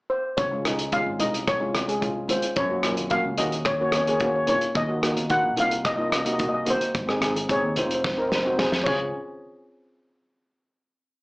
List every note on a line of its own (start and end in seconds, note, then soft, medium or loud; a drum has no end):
0.10 0.22 C5 medium
0.37 1.02 C#2 medium
0.37 0.88 C#5 medium
0.37 kick loud
0.37 closed hi-hat medium
0.51 0.60 G#3 medium
0.51 0.60 C#4 medium
0.51 0.60 F4 medium
0.65 0.82 G#3 medium
0.65 0.82 C#4 medium
0.65 0.82 D#4 medium
0.65 cross-stick medium
0.65 closed hi-hat medium
0.65 low conga medium
0.79 closed hi-hat medium
0.92 1.09 G#3 medium
0.92 1.09 C#4 medium
0.92 1.09 F4 medium
0.92 1.18 F5 medium
0.92 kick medium
0.92 closed hi-hat medium
1.06 1.19 G#1 medium
1.19 2.26 C2 medium
1.19 1.44 G#3 medium
1.19 1.45 C#4 medium
1.19 1.45 D#4 medium
1.19 1.48 D#5 medium
1.19 closed hi-hat medium
1.19 low conga medium
1.34 closed hi-hat medium
1.48 2.32 C#5 medium
1.48 kick loud
1.48 cross-stick medium
1.48 closed hi-hat medium
1.60 1.77 G#3 medium
1.60 1.77 C#4 medium
1.60 1.78 F4 medium
1.75 cross-stick medium
1.75 closed hi-hat medium
1.75 high conga medium
1.87 1.96 G#3 medium
1.87 1.96 C#4 medium
1.87 1.97 G#4 medium
1.87 closed hi-hat medium
2.01 2.18 G#3 medium
2.01 2.18 C#4 medium
2.01 2.19 F4 medium
2.01 kick medium
2.01 closed hi-hat medium
2.28 2.53 G#3 medium
2.28 2.54 C#4 medium
2.28 2.54 F4 medium
2.28 2.58 C5 medium
2.28 closed hi-hat medium
2.28 high conga medium
2.42 closed hi-hat medium
2.56 3.21 F#2 medium
2.56 3.08 C#5 medium
2.56 kick loud
2.56 closed hi-hat medium
2.69 2.78 A#3 medium
2.69 2.78 C#4 medium
2.69 2.79 F#4 medium
2.82 3.00 A#3 medium
2.82 3.00 C#4 medium
2.82 3.01 F4 medium
2.82 cross-stick medium
2.82 closed hi-hat medium
2.82 low conga medium
2.97 closed hi-hat medium
2.97 high conga medium
3.10 3.27 A#3 medium
3.10 3.28 C#4 medium
3.10 3.28 F#4 medium
3.10 3.39 F5 medium
3.10 kick medium
3.10 closed hi-hat medium
3.24 3.37 C#2 medium
3.38 4.44 D#2 medium
3.38 3.63 A#3 medium
3.38 3.63 C#4 medium
3.38 3.64 F#4 medium
3.38 3.67 D#5 medium
3.38 closed hi-hat medium
3.38 low conga medium
3.52 closed hi-hat medium
3.65 3.71 C#5 medium
3.65 kick loud
3.65 cross-stick medium
3.65 closed hi-hat medium
3.72 3.81 C#5 medium
3.80 3.96 A#3 medium
3.80 3.97 C#4 medium
3.80 3.97 F#4 medium
3.80 3.89 C#5 medium
3.91 3.95 C#5 medium
3.91 cross-stick medium
3.91 closed hi-hat medium
3.91 high conga medium
3.97 4.02 C#5 medium
4.03 4.15 A#3 medium
4.03 4.09 C#5 soft
4.07 4.16 C#4 medium
4.07 4.16 G#4 medium
4.07 4.19 C#5 medium
4.07 closed hi-hat medium
4.20 4.37 A#3 medium
4.20 4.38 C#4 medium
4.20 4.38 F#4 medium
4.20 4.25 C#5 medium
4.20 kick medium
4.20 closed hi-hat medium
4.26 4.34 C#5 medium
4.36 4.42 C#5 medium
4.47 4.72 A#3 medium
4.47 4.72 C#4 medium
4.47 4.73 F4 medium
4.47 4.74 C#5 medium
4.47 closed hi-hat medium
4.47 high conga medium
4.47 low conga medium
4.61 closed hi-hat medium
4.75 5.40 D#2 medium
4.75 5.27 D#5 medium
4.75 kick loud
4.75 closed hi-hat medium
4.88 4.97 A#3 medium
4.88 4.97 D#4 medium
4.88 4.98 F#4 medium
5.02 5.19 A#3 medium
5.02 5.20 D#4 medium
5.02 5.20 F#4 medium
5.02 cross-stick medium
5.02 closed hi-hat medium
5.17 closed hi-hat medium
5.17 high conga medium
5.30 5.47 A#3 medium
5.30 5.47 D#4 medium
5.30 5.47 F#4 medium
5.30 5.43 F#5 medium
5.30 kick medium
5.30 closed hi-hat medium
5.43 5.56 A#1 medium
5.56 6.62 C2 medium
5.56 5.82 A#3 medium
5.56 5.82 D#4 medium
5.56 5.82 F4 medium
5.56 5.72 F5 medium
5.56 closed hi-hat medium
5.56 low conga medium
5.71 closed hi-hat medium
5.85 5.93 D#5 medium
5.85 kick loud
5.85 cross-stick medium
5.85 closed hi-hat medium
5.96 6.14 A#3 medium
5.96 6.15 D#4 medium
5.96 6.15 F4 medium
5.96 6.00 D#5 medium
6.02 6.08 D#5 medium
6.10 6.15 D#5 medium
6.10 cross-stick medium
6.10 closed hi-hat medium
6.10 high conga medium
6.16 6.23 D#5 medium
6.25 6.34 A#3 medium
6.25 6.34 D#4 medium
6.25 6.35 F#4 medium
6.25 6.31 D#5 medium
6.25 closed hi-hat medium
6.33 6.38 D#5 medium
6.38 6.55 A#3 medium
6.38 6.56 D#4 medium
6.38 6.56 F#4 medium
6.38 6.46 D#5 medium
6.38 kick medium
6.38 closed hi-hat medium
6.49 6.53 D#5 medium
6.54 6.61 D#5 medium
6.65 6.91 A#3 medium
6.65 6.91 D#4 medium
6.65 6.91 F#4 medium
6.65 closed hi-hat medium
6.65 high conga medium
6.65 low conga medium
6.70 7.47 C5 medium
6.81 closed hi-hat medium
6.95 7.59 G#1 medium
6.95 kick loud
6.95 closed hi-hat medium
7.07 7.16 C4 medium
7.07 7.16 D#4 medium
7.07 7.17 G#4 medium
7.07 cross-stick medium
7.21 7.38 C4 medium
7.21 7.38 D#4 medium
7.21 7.39 G#4 medium
7.21 cross-stick medium
7.21 closed hi-hat medium
7.21 low conga medium
7.36 closed hi-hat medium
7.36 high conga medium
7.49 7.65 C4 medium
7.49 7.66 D#4 medium
7.49 7.66 G#4 medium
7.49 7.76 C#5 medium
7.49 kick medium
7.49 closed hi-hat medium
7.62 7.75 D#2 medium
7.76 8.54 F1 medium
7.76 8.01 C4 medium
7.76 8.02 D#4 medium
7.76 8.02 F4 medium
7.76 7.84 C5 medium
7.76 closed hi-hat medium
7.76 high conga medium
7.76 low conga medium
7.85 7.92 C5 soft
7.91 closed hi-hat medium
7.95 8.00 C5 medium
8.01 8.06 C5 soft
8.01 kick loud
8.01 snare medium
8.07 8.13 C5 soft
8.14 8.34 C4 medium
8.14 8.34 D#4 medium
8.14 8.34 A#4 medium
8.14 8.21 C5 soft
8.22 8.28 C5 medium
8.29 8.35 C5 soft
8.29 snare medium
8.29 high conga medium
8.36 8.42 C5 medium
8.43 8.53 C4 medium
8.43 8.54 D#4 medium
8.43 8.54 F#4 medium
8.43 8.48 C5 soft
8.49 8.57 C5 medium
8.58 8.83 F2 medium
8.58 8.75 C4 medium
8.58 8.75 D#4 medium
8.58 8.75 G#4 medium
8.58 8.64 C5 soft
8.58 kick medium
8.58 snare medium
8.65 8.73 C5 medium
8.72 snare medium
8.84 9.12 C#2 medium
8.84 9.12 C#4 medium
8.84 9.12 F4 medium
8.84 9.12 G#4 medium
8.84 9.10 C#5 medium
8.84 kick loud
8.84 crash medium
8.84 high conga medium